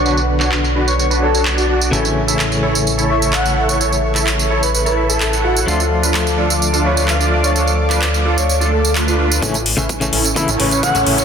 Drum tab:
HH |----------------|----------------|----------------|----------------|
TB |xx-xxx-xxx-xxx-x|xx-xxx-xxx-xxx-x|xx-xxx-xxx-xxx-x|xx-xxx-xxx-xxx-x|
CP |---xx-------x---|----x-------x---|---xx-------x---|----x-------x---|
BD |----------------|----------------|----------------|----------------|

HH |----------------|xxo-xxoxxxoxxxox|
TB |xx-xxx-xxx-xxx-x|xx-xxx-xxx-xxx-x|
CP |---xx-------x---|----------------|
BD |----------------|o---o---o---o---|